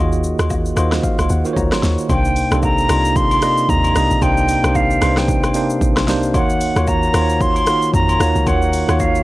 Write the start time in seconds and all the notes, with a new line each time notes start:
Already playing: D#2 D#3 A#3 F4 G#4
0.00 F#4 D#5
0.13 shaker
0.24 shaker
0.39 D#2, cross-stick, high agogo, shaker
0.50 kick, low woodblock, shaker
0.66 shaker
0.76 D#2 D#3 A#3 F4 F#4 C5 D#5, cross-stick, high agogo, shaker
0.92 cross-stick, snare, shaker
1.03 F5, kick, shaker
1.19 C#2, cross-stick, high agogo, shaker
1.29 D#2 F#5, shaker
1.44 D#3 A#3 F4 F#4 C5, shaker
1.53 C#2 C#5 A#5, kick, low woodblock, shaker
1.72 cross-stick, snare, high agogo, shaker
1.83 D#2 C#6, snare, shaker
1.98 shaker
2.09 C2 C3 A#3 D4 D#4 C5 G5, kick, high agogo, shaker
2.25 shaker
2.36 open hi-hat, shaker
2.50 C2 C3 A#3 D4 D#4 A4, cross-stick, high agogo, shaker
2.63 A#5, kick, low woodblock, shaker
2.78 shaker
2.88 C2 C3 A#3 D4 D#4 F4, cross-stick, open hi-hat, high agogo, shaker
3.05 shaker
3.16 C6, kick, shaker
3.31 high agogo, shaker
3.41 C3 A#3 D#4 D5 D#5, cross-stick, open hi-hat, shaker
3.57 shaker
3.69 D#2 A#5, kick, shaker
3.84 high agogo, shaker
3.94 C2 C3 A#3 D4 D#4 D#5, cross-stick, open hi-hat, shaker
4.11 A#1, shaker
4.21 C2 C3 A#3 D4 D#4 C5 G5, kick, high agogo, shaker
4.37 shaker
4.49 open hi-hat, shaker
4.63 C2 C3 A#3 D4 D#4 C5, cross-stick, high agogo, shaker
4.75 F5, kick, low woodblock, shaker
4.90 shaker
5.01 C2 C3 A#3 D4 D#4 B4, cross-stick, open hi-hat, high agogo, shaker
5.09 C5
5.17 G5, cross-stick, snare, shaker
5.28 kick, shaker
5.43 cross-stick, high agogo, shaker
5.54 C3 A#3 D4 D#4 C5, open hi-hat, shaker
5.70 shaker
5.81 A#1, kick, shaker
5.96 cross-stick, snare, high agogo, shaker
6.07 C2 C3 A#3 D4 D#4 C5, snare, open hi-hat, shaker
6.23 shaker
6.33 D#2 D#3 A#3 D#4 F#4 C#5 F#5, kick, high agogo, shaker
6.50 shaker
6.61 open hi-hat, shaker
6.75 D#2 D#3 A#3 F4 F#4 C#5, cross-stick, high agogo, shaker
6.87 A#5, kick, low woodblock, shaker
7.03 shaker
7.13 D#2 D#3 A#3 F4 F#4 C5, cross-stick, open hi-hat, high agogo, shaker
7.22 C#5
7.29 shaker
7.41 C6, kick, shaker
7.56 high agogo, shaker
7.66 D#3 A#3 F4 F#4 A#4, cross-stick, open hi-hat, shaker
7.82 shaker
7.94 F2 A#5, kick, shaker
8.09 high agogo, shaker
8.19 D#2 D#3 A#3 F4 F#4 C#5, cross-stick, open hi-hat, shaker
8.35 C#2, shaker
8.46 D#2 D#3 A#3 D#4 F#4 C#5 F#5, kick, high agogo, shaker
8.62 shaker
8.73 open hi-hat, shaker
8.88 D#2 D#3 A#3 F4 F#4 C#5, cross-stick, high agogo, shaker
9.00 F5, kick, low woodblock, shaker
9.15 shaker